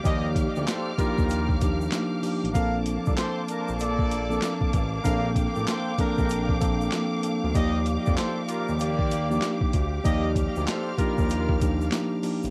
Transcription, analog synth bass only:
X:1
M:4/4
L:1/16
Q:"Swing 16ths" 1/4=96
K:Eblyd
V:1 name="Analog synth bass" clef=bass
E,,3 D,, z3 E,,4- E,, z3 A,,, | B,,,3 C,, z3 B,,,4- B,,, z2 A,,,2 | B,,,3 A,,, z3 B,,,4- B,,, z3 D,, | E,,3 F,, z3 E,,4- E,, z2 D,,2 |
E,,3 D,, z3 E,,4- E,, z3 A,,, |]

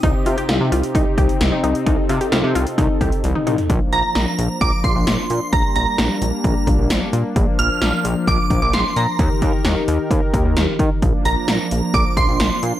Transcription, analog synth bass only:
X:1
M:4/4
L:1/16
Q:1/4=131
K:Bb
V:1 name="Analog synth bass" clef=bass
C,, z C, z C,, C, C,, z C,, z C,, z C,, z C,, z | C,, z C, z C,, C, C,, z C,, z C,, z C,, z C,, z | B,,, z B,,, z B,,, z B,,, z B,,, z B,,, B,,, B,,, z B,, z | B,,, z B,,, z B,,, z B,,, z B,,, z B,,, B,,, B,,, z B,, z |
B,,, z B,,, z B,,, z B,,, z B,,, z B,,, B,,, B,,, z B,, z | E,, z E,, z E,, z E,, z E,, z E,, E,, E,, z E, z | B,,, z B,,, z B,,, z B,,, z B,,, z B,,, B,,, B,,, z B,, z |]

